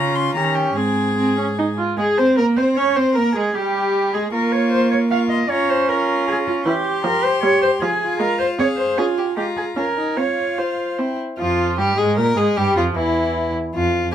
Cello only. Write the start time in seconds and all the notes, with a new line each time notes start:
Already playing: C#3
0.36 D#3
0.76 G#2
1.98 G#4
2.18 C5
2.37 A#4
2.57 C5
2.77 C#5
2.96 C5
3.15 A#4
3.36 G#4
3.55 G4
4.14 G#4
4.33 A#4
4.52 C#5
4.72 C5
4.91 C#5
5.11 F5
5.30 D#5
5.50 C#5
5.70 C5
5.89 A#4
6.27 G#4
6.47 F4
6.67 G4
7.05 A#4
7.24 C5
7.43 C#5
7.63 C5
7.82 G#4
8.21 A#4
8.39 C5
8.59 C#5
8.78 C5
8.98 F4
9.37 G4
9.57 G#4
9.77 A#4
10.17 C#5
10.58 C5
11.39 F2
11.78 G2
11.98 G#2
12.18 A#2
12.37 G#2
12.57 G2
12.76 F2
12.96 E2
13.74 F2